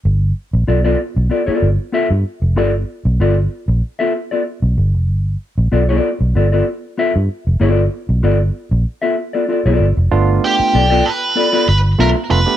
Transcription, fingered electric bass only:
\new Staff \with { instrumentName = "Fingered electric bass" } { \clef bass \time 4/4 \key g \mixolydian \tempo 4 = 95 g,,8 r16 bes,,16 b,,8 r16 b,,16 r8 g,,16 r8 g,16 r16 f,,16 | g,,8 r16 b,,16 g,,8 r16 bes,,16 r4 r16 b,,16 g,,16 f,,16 | g,,8 r16 bes,,16 b,,8 r16 b,,16 g,,8 r8. g,16 r16 f,,16 | g,,8 r16 b,,16 g,,8 r16 bes,,16 r4 r16 b,,16 g,,16 f,,16 |
g,,8 r8 b,,8 r4 g,,8 b,,16 r16 f,,16 r16 | }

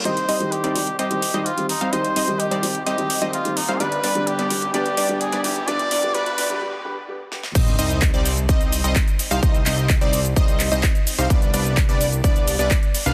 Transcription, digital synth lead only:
\new Staff \with { instrumentName = "Digital synth lead" } { \time 4/4 \key c \minor \tempo 4 = 128 ees''8 ees''8 r16 d''8 r16 ees''8. ees''8 r8 f''16 | ees''8 ees''8 r16 d''8 r16 ees''8. ees''8 r8 f''16 | d''8 d''8 r16 d''8 r16 d''8 d''8 r16 d''8 r16 | d''8 d''8 d''8 d''8 r2 |
ees''8 ees''8 r16 d''8 r16 ees''8. ees''8 r8 f''16 | ees''8 ees''8 r16 d''8 r16 ees''8. ees''8 r8 f''16 | d''8 d''8 r16 d''8 r16 d''8. d''8 r8 f''16 | }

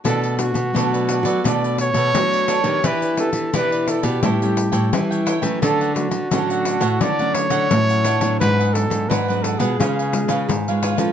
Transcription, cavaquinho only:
\new Staff \with { instrumentName = "Cavaquinho" } { \time 4/4 \key b \minor \tempo 4 = 86 <d' a' b' d''>16 <a' b' d''>16 r8 <d' a' b' d''>16 <a' b' d''>16 <d' a' b' d''>16 <a' b' d''>16 <d' a' b' d''>16 <a' b' d''>16 r16 <a' b'>8 <a' b' d''>16 <d' a' b' d''>16 <a' b' d''>16 | <e' g' b' d''>16 <g' b' d''>16 r8 <e' g' b' d''>16 <g' b' d''>16 <e' g' b' d''>16 <g' b' d''>16 <e' a' cis'' g''>16 <a' cis'' g''>16 r16 <a' cis'' g''>8 <a' cis'' g''>16 <e' a' cis'' g''>16 <a' cis'' g''>16 | <d' a' cis'' fis''>16 <a' cis'' fis''>16 r8 <d' a' cis'' fis''>16 <a' cis'' fis''>16 <d' a' cis'' fis''>16 <a' cis'' fis''>16 <d' a' cis'' fis''>16 <a' cis'' fis''>16 r16 <a' cis'' fis''>8 <a' cis'' fis''>16 <d' a' cis'' fis''>16 <a' cis'' fis''>16 | <d' gis' b' fis''>16 <gis' b' fis''>16 r8 <d' gis' b' fis''>16 <gis' b' fis''>16 <d' gis' b' fis''>16 <gis' b' fis''>16 <eis' b' cis'' eis''>16 <b' cis'' eis''>16 r16 <b' cis'' eis''>8 <b' cis'' eis''>16 <eis' b' cis'' eis''>16 <b' cis'' eis''>16 | }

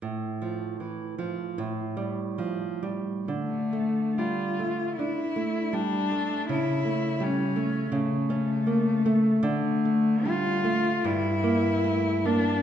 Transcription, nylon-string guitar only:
\new Staff \with { instrumentName = "Nylon-string guitar" } { \clef bass \time 4/4 \key d \minor \tempo 4 = 77 a,8 f8 e8 f8 a,8 g8 f8 g8 | d8 a8 g8 a8 d'8 a8 g8 a8 | cis8 a8 g8 a8 cis8 cis'8 bes8 a8 | d8 a8 g8 a8 g,8 bes8 a8 bes8 | }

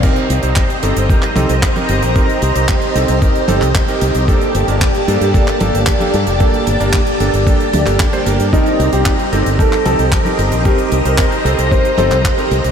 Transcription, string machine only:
\new Staff \with { instrumentName = "String machine" } { \time 4/4 \key c \dorian \tempo 4 = 113 << { <c'' ees'' bes''>1~ | <c'' ees'' bes''>1 | <bes d'' a''>1~ | <bes d'' a''>1 |
<c'' ees'' bes''>1~ | <c'' ees'' bes''>1 | } \\ { g'1~ | g'1~ | g'1~ | g'1~ |
g'1~ | g'1 | } >> }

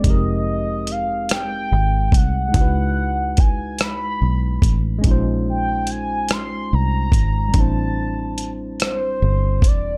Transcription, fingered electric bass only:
\new Staff \with { instrumentName = "Fingered electric bass" } { \clef bass \time 6/8 \key des \lydian \tempo 4. = 48 f,,2 aes,,8 c,8 | des,2 ces,8 a,,8 | bes,,2 c,8 aes,,8 | a,,2 g,,8 e,,8 | }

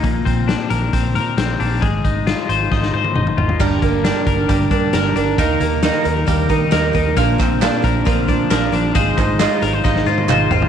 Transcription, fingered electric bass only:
\new Staff \with { instrumentName = "Fingered electric bass" } { \clef bass \time 4/4 \key bes \mixolydian \tempo 4 = 135 bes,,8 bes,,8. r16 bes,,8 bes,,8 bes,8 bes,,8 bes,,8 | aes,,8 aes,,8. r16 aes,,8 aes,,8 aes,8 aes,,8 aes,,8 | g,,8 g,,8. r16 g,,8 g,,8 g,8 g,,8 g,,8 | ees,8 ees,8. r16 ees,8 ees,8 ees8 ees,8 ees,8 |
bes,,8 bes,,8. r16 bes,,8 bes,,8 bes,8 bes,,8 bes,,8 | aes,,8 aes,,8. r16 aes,,8 aes,,8 aes,8 aes,,8 aes,,8 | }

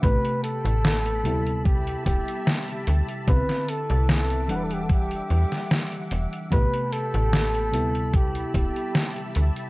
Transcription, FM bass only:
\new Staff \with { instrumentName = "FM bass" } { \clef bass \time 4/4 \key d \mixolydian \tempo 4 = 74 a,,16 r8 a,,8. d,4 d,,16 r8. d,16 r16 | c,16 r8 c,8. e,,4 e,16 r8. e,,16 r16 | a,,16 r8 a,,8. d,4 d,,16 r8. d,16 r16 | }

